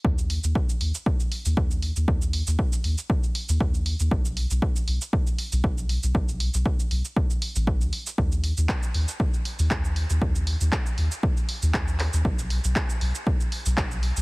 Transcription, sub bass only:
0.05 0.39 D#2 loud
0.44 0.53 D#2 medium
0.81 0.92 D#2 medium
1.45 1.55 D#2 loud
1.57 1.91 D#2 medium
1.96 2.05 D#2 medium
2.08 2.42 D#2 loud
2.47 2.56 D#2 medium
2.84 2.95 D#2 medium
3.49 3.58 D#2 medium
3.60 3.95 D#2 medium
4.00 4.09 D#2 medium
4.11 4.46 B1 loud
4.51 4.60 B1 medium
4.88 4.98 B1 medium
5.52 5.61 B1 loud
5.64 5.98 B1 medium
6.03 6.12 B1 medium
6.15 6.49 B1 medium
6.54 6.63 B1 medium
6.91 7.02 B1 medium
7.56 7.83 A1 loud
7.81 7.90 D2 loud
8.18 8.52 D#2 loud
8.57 8.66 D#2 medium
8.94 9.05 D#2 medium
9.59 9.68 D#2 loud
9.71 10.05 D#2 medium
10.10 10.19 D#2 medium
10.21 10.56 D#2 medium
10.61 10.70 D#2 medium
10.98 11.09 D#2 medium
11.62 11.71 D#2 medium
11.74 12.08 D#2 medium
12.13 12.22 D#2 medium
12.25 12.59 B1 loud
12.64 12.73 B1 medium
13.01 13.12 B1 medium
13.66 13.75 B1 loud
13.77 14.12 B1 medium
14.17 14.22 B1 medium

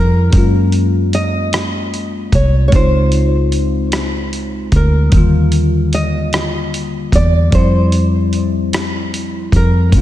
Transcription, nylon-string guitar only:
0.00 1.10 A#4 medium
1.15 2.29 D#5 medium
2.35 2.67 C#5 medium
2.68 2.74 C#5 medium
2.75 4.80 C5 medium
4.76 5.98 A#4 medium
5.94 7.15 D#5 medium
7.15 7.54 D5 medium
7.55 9.59 C5 medium
9.56 10.02 A#4 medium

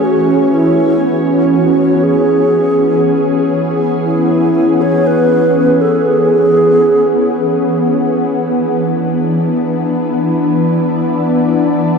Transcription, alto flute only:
0.04 0.55 F#4 medium
0.54 1.27 E4 medium
1.53 2.05 F#4 medium
2.03 3.54 G#4 medium
4.05 4.83 E4 medium
4.82 5.08 C#5 medium
5.07 5.83 B4 medium
5.81 6.08 A4 medium
6.06 7.55 G#4 medium

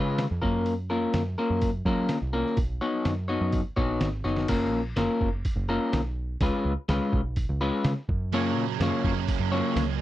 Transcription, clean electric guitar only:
0.00 0.25 G#3 medium
0.00 0.25 C#4 medium
0.00 0.25 F4 medium
0.00 0.25 B4 medium
0.42 0.73 A#3 medium
0.42 0.73 C#4 medium
0.42 0.73 F4 medium
0.42 0.73 A#4 medium
0.90 1.22 A#3 medium
0.90 1.21 C#4 medium
0.90 1.21 F4 medium
0.90 1.21 A#4 medium
1.38 1.69 A#3 medium
1.38 1.69 C#4 medium
1.38 1.69 F4 medium
1.38 1.69 A#4 medium
1.86 2.17 A#3 medium
1.86 2.17 C#4 medium
1.86 2.17 F4 medium
1.86 2.17 A#4 medium
2.33 2.58 A#3 medium
2.33 2.57 C#4 medium
2.33 2.57 F4 medium
2.33 2.57 A#4 medium
2.81 3.13 B3 medium
2.81 3.13 D#4 medium
2.81 3.12 F#4 medium
2.81 3.12 C#5 medium
3.28 3.61 B3 medium
3.28 3.60 D#4 medium
3.28 3.60 F#4 medium
3.28 3.60 C#5 medium
3.76 4.08 B3 medium
3.76 4.08 D#4 medium
3.76 4.08 F#4 medium
3.76 4.08 C#5 medium
4.24 4.48 B3 soft
4.24 4.49 D#4 medium
4.24 4.49 F#4 medium
4.24 4.49 C#5 medium
4.49 4.80 A#3 medium
4.49 4.80 C#4 medium
4.49 4.80 F4 medium
4.49 4.80 A#4 medium
4.96 5.28 A#3 medium
4.96 5.28 C#4 medium
4.96 5.28 F4 medium
4.96 5.28 A#4 medium
5.69 6.00 A#3 medium
5.69 6.00 C#4 medium
5.69 6.00 F4 medium
5.69 6.00 A#4 medium
6.41 6.72 G#3 medium
6.41 6.72 C#4 medium
6.41 6.73 F4 medium
6.41 6.73 B4 medium
6.89 7.20 G#3 medium
6.89 7.20 C#4 medium
6.89 7.20 F4 medium
6.89 7.20 B4 medium
7.61 7.93 G#3 medium
7.61 7.92 C#4 medium
7.61 7.92 F4 medium
7.61 7.92 B4 medium
8.33 8.64 A#3 medium
8.33 8.64 C#4 medium
8.33 8.64 F4 medium
8.33 8.64 C#5 medium
8.81 9.12 A#3 medium
8.81 9.12 C#4 medium
8.81 9.13 F4 medium
8.81 9.13 C#5 medium
9.52 9.84 A#3 medium
9.52 9.84 C#4 medium
9.52 9.84 F4 medium
9.52 9.83 C#5 loud

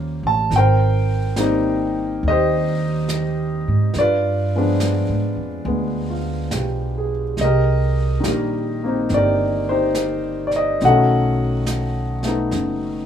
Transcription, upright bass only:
0.00 0.20 D#2 medium
0.23 0.49 A1 medium
0.51 2.18 G#1 medium
2.23 3.63 D#2 medium
3.68 3.93 G#2 medium
3.95 5.05 G2 medium
5.09 5.36 G#2 medium
5.36 5.63 F2 medium
5.65 6.48 D2 medium
6.52 7.35 B1 medium
7.39 8.21 C2 medium
8.25 9.07 A#1 medium
9.10 10.77 G1 medium
10.82 12.48 B1 medium
12.53 13.06 F#1 medium

